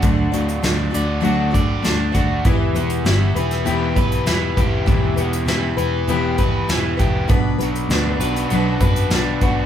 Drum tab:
HH |x-xxx-x-x-x-x-x-|x-xxx-xxx-xxx-x-|x-xxx-x-x-x-x-x-|x-xxx-xxx-xxx-x-|
SD |----o-------o---|----o--o----o---|----o-------o---|----o-------o---|
BD |o---------o---o-|o---------o---o-|o---------o---o-|o---------o---o-|